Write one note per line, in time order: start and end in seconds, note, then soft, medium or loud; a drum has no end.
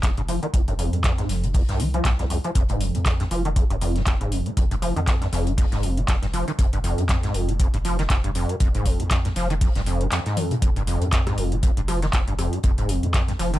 0.03 0.38 F1 medium
0.03 0.11 F2 medium
0.03 kick loud
0.03 snare loud
0.03 clap loud
0.03 closed hi-hat medium
0.17 0.21 G2 loud
0.17 closed hi-hat soft
0.28 0.40 F3 medium
0.28 closed hi-hat medium
0.28 open hi-hat loud
0.43 0.46 D#3 medium
0.43 closed hi-hat soft
0.54 0.89 F1 loud
0.54 0.61 F2 medium
0.54 kick loud
0.54 closed hi-hat medium
0.68 0.74 G2 medium
0.68 closed hi-hat soft
0.79 0.95 F2 medium
0.79 closed hi-hat medium
0.79 open hi-hat loud
0.93 1.26 F2 medium
0.93 0.99 G2 medium
0.93 closed hi-hat soft
1.04 1.12 F2 loud
1.04 kick loud
1.04 snare loud
1.04 clap loud
1.04 closed hi-hat medium
1.17 1.31 G#2 medium
1.17 snare soft
1.17 closed hi-hat soft
1.29 1.64 F1 medium
1.29 1.45 F2 medium
1.29 snare soft
1.29 closed hi-hat medium
1.29 open hi-hat loud
1.44 1.47 C3 loud
1.44 closed hi-hat soft
1.54 1.62 F2 medium
1.54 kick loud
1.54 closed hi-hat medium
1.54 open hi-hat medium
1.69 2.01 C2 medium
1.69 1.81 G2 loud
1.69 snare soft
1.69 closed hi-hat soft
1.79 1.88 F3 medium
1.79 closed hi-hat medium
1.79 open hi-hat loud
1.94 2.07 F3 medium
1.94 closed hi-hat soft
2.05 2.40 C2 medium
2.05 2.13 F2 medium
2.05 kick loud
2.05 snare loud
2.05 clap loud
2.05 closed hi-hat medium
2.19 2.25 F2 medium
2.19 snare soft
2.19 closed hi-hat soft
2.30 2.38 F2 medium
2.30 closed hi-hat medium
2.30 open hi-hat loud
2.44 2.50 F3 medium
2.44 closed hi-hat soft
2.55 2.90 F1 medium
2.55 2.63 F2 loud
2.55 kick loud
2.55 closed hi-hat medium
2.69 2.82 G#2 medium
2.69 closed hi-hat soft
2.81 2.96 F2 medium
2.81 closed hi-hat medium
2.81 open hi-hat loud
2.94 3.27 F2 medium
2.94 2.99 C3 loud
2.94 closed hi-hat soft
3.06 3.14 F2 medium
3.06 kick loud
3.06 snare loud
3.06 clap loud
3.06 closed hi-hat medium
3.06 closed hi-hat loud
3.20 3.24 G2 loud
3.20 snare soft
3.20 closed hi-hat soft
3.31 3.66 F1 medium
3.31 3.43 F3 medium
3.31 closed hi-hat medium
3.31 open hi-hat loud
3.45 3.49 D#3 medium
3.45 closed hi-hat soft
3.56 3.64 F2 medium
3.56 kick loud
3.56 closed hi-hat medium
3.70 4.03 F1 loud
3.70 3.76 G2 medium
3.70 closed hi-hat soft
3.81 3.97 F2 medium
3.81 closed hi-hat medium
3.81 open hi-hat loud
3.96 4.02 G2 medium
3.96 snare soft
3.96 closed hi-hat soft
4.06 4.42 F1 medium
4.06 4.14 F2 loud
4.06 kick loud
4.06 snare loud
4.06 clap loud
4.06 closed hi-hat medium
4.21 4.33 G#2 medium
4.21 closed hi-hat soft
4.32 4.47 F2 medium
4.32 closed hi-hat medium
4.32 open hi-hat loud
4.46 4.50 C3 loud
4.46 closed hi-hat soft
4.57 4.92 F1 medium
4.57 4.65 F2 medium
4.57 kick loud
4.57 closed hi-hat medium
4.71 4.75 G2 medium
4.71 closed hi-hat soft
4.82 4.94 F3 medium
4.82 closed hi-hat medium
4.82 open hi-hat loud
4.96 5.29 F2 medium
4.96 5.00 D#3 medium
4.96 closed hi-hat soft
5.07 5.15 F2 medium
5.07 kick loud
5.07 snare loud
5.07 clap loud
5.07 closed hi-hat medium
5.21 5.28 G2 medium
5.21 snare soft
5.21 closed hi-hat soft
5.32 5.68 F1 medium
5.32 5.48 F2 medium
5.32 snare soft
5.32 closed hi-hat medium
5.32 open hi-hat medium
5.46 5.53 G2 medium
5.46 closed hi-hat soft
5.58 5.66 F2 loud
5.58 kick loud
5.58 closed hi-hat medium
5.58 open hi-hat medium
5.72 6.05 F1 medium
5.72 5.84 G#2 medium
5.72 snare soft
5.72 closed hi-hat soft
5.83 5.99 F2 medium
5.83 closed hi-hat medium
5.83 open hi-hat medium
5.97 6.01 C3 loud
5.97 closed hi-hat soft
6.08 6.43 F1 medium
6.08 6.16 F2 medium
6.08 kick loud
6.08 snare loud
6.08 clap loud
6.08 closed hi-hat medium
6.22 6.26 G2 loud
6.22 snare soft
6.22 closed hi-hat soft
6.33 6.45 F3 medium
6.33 closed hi-hat medium
6.33 open hi-hat medium
6.48 6.51 D#3 medium
6.48 closed hi-hat soft
6.59 6.94 F1 loud
6.59 6.67 F2 medium
6.59 kick loud
6.59 closed hi-hat medium
6.73 6.79 G2 medium
6.73 closed hi-hat soft
6.84 7.00 F2 medium
6.84 closed hi-hat medium
6.84 open hi-hat medium
6.98 7.31 F2 medium
6.98 7.04 G2 medium
6.98 closed hi-hat soft
7.09 7.17 F2 loud
7.09 kick loud
7.09 snare loud
7.09 clap loud
7.09 closed hi-hat medium
7.23 7.36 G#2 medium
7.23 snare soft
7.23 closed hi-hat soft
7.34 7.69 F1 medium
7.34 7.50 F2 medium
7.34 closed hi-hat medium
7.34 open hi-hat medium
7.49 7.52 C3 loud
7.49 closed hi-hat soft
7.60 7.67 F2 medium
7.60 kick loud
7.60 closed hi-hat loud
7.60 closed hi-hat medium
7.74 8.07 F1 loud
7.74 7.77 G2 loud
7.74 closed hi-hat soft
7.85 7.97 F3 medium
7.85 closed hi-hat medium
7.85 open hi-hat medium
7.99 8.03 D#3 medium
7.99 snare soft
7.99 closed hi-hat soft
8.10 8.45 F1 medium
8.10 8.18 F2 medium
8.10 kick loud
8.10 snare loud
8.10 clap loud
8.10 closed hi-hat medium
8.24 8.30 G2 medium
8.24 closed hi-hat soft
8.35 8.51 F2 medium
8.35 closed hi-hat medium
8.35 open hi-hat medium
8.49 8.55 G2 medium
8.49 closed hi-hat soft
8.60 8.95 F1 medium
8.60 8.68 F2 medium
8.60 kick loud
8.60 closed hi-hat medium
8.75 8.87 G#2 medium
8.75 closed hi-hat soft
8.86 9.01 F2 medium
8.86 kick medium
8.86 closed hi-hat medium
8.86 open hi-hat loud
9.00 9.33 F2 medium
9.00 9.03 C3 loud
9.00 closed hi-hat soft
9.11 9.19 F2 medium
9.11 kick loud
9.11 snare loud
9.11 clap loud
9.11 closed hi-hat medium
9.11 closed hi-hat loud
9.25 9.29 G2 loud
9.25 snare soft
9.25 closed hi-hat soft
9.36 9.71 F1 medium
9.36 9.48 F3 medium
9.36 snare soft
9.36 closed hi-hat medium
9.36 open hi-hat loud
9.50 9.54 D#3 medium
9.50 closed hi-hat soft
9.61 9.69 F2 medium
9.61 kick loud
9.61 closed hi-hat medium
9.61 open hi-hat medium
9.75 10.08 F1 loud
9.75 9.82 G2 medium
9.75 snare medium
9.75 closed hi-hat soft
9.86 10.02 F2 medium
9.86 closed hi-hat medium
9.86 open hi-hat medium
10.01 10.07 G2 medium
10.01 closed hi-hat soft
10.12 10.20 F2 loud
10.12 snare loud
10.12 clap loud
10.12 closed hi-hat medium
10.26 10.38 G#2 medium
10.26 snare soft
10.26 closed hi-hat soft
10.37 10.53 F2 medium
10.37 closed hi-hat medium
10.37 open hi-hat loud
10.37 high tom medium
10.51 10.55 C3 loud
10.51 closed hi-hat soft
10.51 mid tom medium
10.62 10.97 F1 loud
10.62 10.70 F2 medium
10.62 kick loud
10.62 closed hi-hat medium
10.76 10.82 G2 medium
10.76 closed hi-hat soft
10.87 11.03 F2 medium
10.87 closed hi-hat medium
10.87 open hi-hat loud
11.01 11.34 F2 medium
11.01 11.08 G2 medium
11.01 closed hi-hat soft
11.12 11.20 F2 loud
11.12 kick loud
11.12 snare loud
11.12 clap loud
11.12 closed hi-hat medium
11.27 11.39 G#2 medium
11.27 cross-stick medium
11.27 snare soft
11.27 closed hi-hat soft
11.38 11.73 F1 medium
11.38 11.54 F2 medium
11.38 closed hi-hat medium
11.38 open hi-hat medium
11.52 11.56 C3 loud
11.52 closed hi-hat soft
11.63 11.71 F2 medium
11.63 kick loud
11.63 closed hi-hat medium
11.63 closed hi-hat loud
11.77 12.10 F1 loud
11.77 11.81 G2 loud
11.77 closed hi-hat soft
11.88 12.00 F3 medium
11.88 cross-stick medium
11.88 closed hi-hat medium
11.88 open hi-hat loud
12.02 12.06 D#3 medium
12.02 snare soft
12.02 closed hi-hat soft
12.13 12.48 F1 medium
12.13 12.21 F2 medium
12.13 kick loud
12.13 snare loud
12.13 clap loud
12.13 closed hi-hat medium
12.28 12.34 G2 medium
12.28 closed hi-hat soft
12.39 12.54 F2 medium
12.39 cross-stick medium
12.39 closed hi-hat medium
12.39 open hi-hat loud
12.53 12.59 G2 medium
12.53 closed hi-hat soft
12.63 12.99 F1 loud
12.63 12.72 F2 loud
12.63 kick loud
12.63 closed hi-hat medium
12.78 12.90 G#2 medium
12.78 closed hi-hat soft
12.89 13.05 F2 medium
12.89 closed hi-hat medium
12.89 open hi-hat loud
13.03 13.36 F2 medium
13.03 13.07 C3 loud
13.03 closed hi-hat soft
13.13 13.22 F2 medium
13.13 kick loud
13.13 snare loud
13.13 clap loud
13.13 closed hi-hat medium
13.28 13.32 G2 loud
13.28 snare soft
13.28 closed hi-hat soft
13.39 13.59 F1 medium
13.39 13.51 F3 medium
13.39 snare soft
13.39 closed hi-hat medium
13.39 open hi-hat loud
13.53 13.57 D#3 medium
13.53 closed hi-hat soft